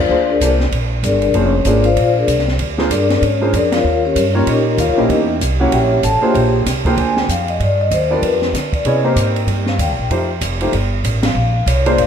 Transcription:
0.00 F4 C5 D5 F5
0.09 D2 A#3 D4 F4 G#4 C5
0.30 D4 G#4 A#4 D5
0.41 C2 A#3 D4 F4 G#4 C5, kick, hi-hat pedal, ride
0.60 snare
0.72 A#1, kick, ride
1.03 G1 D4 G#4 A#4 D5, kick, hi-hat pedal, ride
1.22 ride
1.34 F1 A#3 C#4 D4 F4 G#4 C5 C#5, kick, ride
1.65 G#1 A#3 D4 F4 G#4 A#4 C5 D5, kick, hi-hat pedal, ride
1.84 F4 C5 D5 F5, ride
1.96 A#1, kick, ride
2.18 D4 G#4 A#4 D5
2.27 C2, kick, hi-hat pedal, ride
2.39 snare
2.48 snare
2.59 D2, kick, ride
2.78 A#3 D4 F4 G#4 C5, snare
2.90 G2 D4 G#4 A#4 D5, kick, hi-hat pedal, ride
3.10 snare, ride
3.22 G#2 C#4 C#5, kick, ride
3.41 A#3 D4 F4 G#4 C5
3.53 F2 D4 G#4 A#4 D5, kick, hi-hat pedal, ride
3.72 F4 A#4 C#5 F5, snare, ride
3.84 D#2
4.05 C#4 G4 A#4 C#5
4.16 G2, kick, hi-hat pedal, ride
4.34 A#3 C#4 D#4 F4 G4 A#4 C#5
4.47 A#2 D#4 G4 A#4 D#5, kick, ride
4.77 D#2 F4 A#4 C#5 F5, kick, hi-hat pedal, ride
4.88 C#2
4.97 A#1 A#3 C#4 D#4 E4 G4 A#4 C5 D#5
5.09 E2 D#4 D#5, kick, ride
5.40 C2, kick, hi-hat pedal, ride
5.60 A#3 C#4 E4 F#4 G4 C#5 F#5
5.72 A#1 G4 C#5 E5 G5, kick, ride
6.03 A1 A4 A5, kick, hi-hat pedal, ride
6.21 A#3 D4 F4 G4 G#4 C5 C#5 E5 G5, muted upright bass stroke
6.34 A#1 G4 G5, kick, ride
6.66 C2, kick, snare, hi-hat pedal, ride
6.85 A#3 D4 F4 G#4 C5 G5, kick, ride
6.97 D2 G#5, kick, ride
7.17 G5, snare
7.28 F2 F5, kick, hi-hat pedal, ride
7.48 D#5, ride
7.60 G2 D5, kick, ride
7.81 D#5
7.91 D#2 C5, kick, hi-hat pedal, ride
8.10 B3 D4 F4 G4 A#4 D5
8.22 F2 B4, kick, ride
8.42 snare
8.53 D3, kick, snare, hi-hat pedal, ride
8.73 D5, kick, ride
8.85 C3 B3 C#4 E4 G#4 C#5 D#5, kick, ride
9.04 A#3 C4 D#4 G4 C5
9.16 G#2, kick, hi-hat pedal, ride
9.36 ride
9.47 G2, kick, ride
9.66 F5, snare
9.78 D#2 G5, kick, hi-hat pedal, ride
9.88 C2
9.99 A#1
10.10 F2 A3 D#4 F4 G4 C5, kick, ride
10.41 F1, kick, hi-hat pedal, ride
10.61 A3 D#4 F4 G4 C5, ride
10.72 G1, kick, ride
11.04 A1, kick, hi-hat pedal, ride
11.23 F5, snare, ride
11.35 A#1
11.66 C2 C#5, kick, hi-hat pedal, ride
11.86 A#3 D4 F4 G#4 C5 D5, ride
11.97 G#1 F5, kick, ride

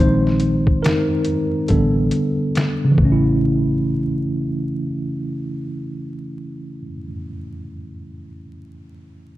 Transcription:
Already playing: D#3 C5
0.00 A#1 G#3 C4 D#4
0.27 snare
0.40 closed hi-hat
0.67 kick
0.83 D#4 A#4, finger snap, snare, closed hi-hat
1.25 closed hi-hat
1.68 A1 D3 G3 B3 D4 A4, kick, closed hi-hat
2.11 closed hi-hat
2.55 finger snap, snare, closed hi-hat
2.85 C#3
2.91 E3
2.98 A1 A3, kick
3.05 C#4
3.12 E4

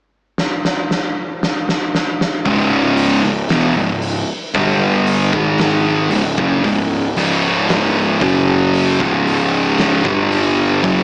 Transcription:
0.38 snare
0.65 snare
0.91 snare
1.43 snare
1.69 snare
1.95 snare
2.21 snare
2.45 C#1 C#2 G#2 C#3, kick, open hi-hat
2.97 open hi-hat
3.23 C#1 C#2 G#2
3.49 E1 E2 B2, snare, open hi-hat
3.75 C#1 C#2 G#2
4.02 open hi-hat
4.54 G1 G2 D3 G3, kick, open hi-hat
5.07 open hi-hat
5.33 G#1 G#2 D#3 G#3, kick
5.58 snare, open hi-hat
6.10 C#1 C#2 G#2, open hi-hat
6.38 F#1 F#2 C#3, kick
6.64 C#1 C#2 G#2, kick, open hi-hat
7.16 C#1 C#2 G#2 C#3, open hi-hat
7.69 snare, open hi-hat
8.21 F#1 F#2 C#3 F#3, kick, open hi-hat
8.74 open hi-hat
9.00 C#1 C#2 G#2 C#3, kick, snare
9.27 open hi-hat
9.78 snare, open hi-hat
10.05 G1 G2 D3 G3, kick
10.32 open hi-hat
10.83 F#1 F#2 C#3 F#3, kick, open hi-hat

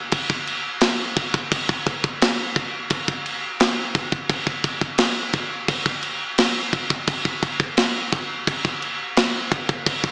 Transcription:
0.12 kick, crash
0.30 kick
0.47 crash
0.81 snare, crash
1.16 kick, crash
1.34 kick
1.52 kick, crash
1.69 kick
1.86 kick, crash
2.04 kick
2.22 snare, crash
2.56 kick, crash
2.90 kick, crash
3.08 kick
3.26 crash
3.60 snare, crash
3.95 kick, crash
4.12 kick
4.29 kick, crash
4.47 kick
4.64 kick, crash
4.81 kick
4.98 snare, crash
5.33 kick, crash
5.68 kick, crash
5.86 kick
6.03 crash
6.38 snare, crash
6.73 kick, crash
6.90 kick
7.07 kick, crash
7.25 kick
7.43 kick, crash
7.60 kick
7.77 snare, crash
8.13 kick, crash
8.47 kick, crash
8.65 kick
8.82 crash
9.17 snare, crash
9.52 kick, crash
9.69 kick
9.86 kick, crash
10.04 kick

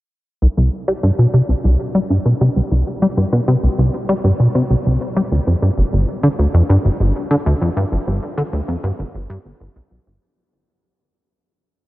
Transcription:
0.42 C2
0.57 C2
0.88 G3
1.03 G2
1.19 B2
1.34 C3
1.49 C2
1.64 C2
1.95 G3
2.10 G2
2.26 B2
2.41 C3
2.56 C2
2.71 C2
3.02 G3
3.17 G2
3.33 B2
3.48 C3
3.63 C2
3.79 C2
4.09 G3
4.24 G2
4.40 B2
4.55 C3
4.71 C2
4.86 C2
5.17 G3
5.32 D2
5.47 F2
5.62 G2
5.78 G1
5.93 G1
6.23 D3
6.39 D2
6.54 F2
6.69 G2
6.85 G1
7.00 G1
7.30 D3
7.46 D2
7.61 F2
7.76 G2
7.92 G1
8.07 G1
8.38 D3
8.53 D2
8.68 F2
8.84 G2
8.99 G1
9.14 G1
9.30 G2
9.45 G1
9.60 G1
9.76 B1
9.91 B1
10.07 G1

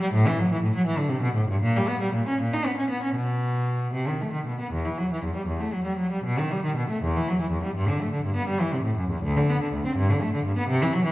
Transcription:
0.00 G3
0.13 A2
0.27 E3
0.39 F#3
0.52 E3
0.62 A2
0.75 F#3
0.86 E3
0.98 D3
1.09 C3
1.22 B2
1.35 A2
1.48 G2
1.62 A#2
1.76 G3
1.88 B3
2.01 G3
2.14 A#2
2.28 C#4
2.41 A#2
2.53 D#4
2.65 B3
2.77 C#4
2.90 B3
3.03 C#4
3.15 B2
3.94 C3
4.08 D#3
4.21 A3
4.33 D#3
4.46 B2
4.61 B3
4.72 E2
4.85 E3
4.98 F#3
5.12 E3
5.24 E2
5.35 G3
5.47 E2
5.60 A3
5.73 F#3
5.84 G3
5.98 F#3
6.12 G3
6.24 B2
6.39 D#3
6.51 G3
6.65 D#3
6.77 B2
6.90 A3
7.03 E2
7.17 E3
7.29 F#3
7.41 E3
7.51 E2
7.64 G3
7.74 G2
7.89 D3
8.02 A3
8.12 D3
8.25 G2
8.36 B3
8.47 G3
8.60 E3
8.73 C3
8.84 A2
8.97 F#2
9.10 E2
9.22 D2
9.37 D3
9.50 B3
9.61 D3
9.73 D2
9.86 C4
9.96 G2
10.11 D3
10.21 A3
10.34 D3
10.46 G2
10.57 B3
10.68 C3
10.82 E3
10.93 F#3
11.05 E3

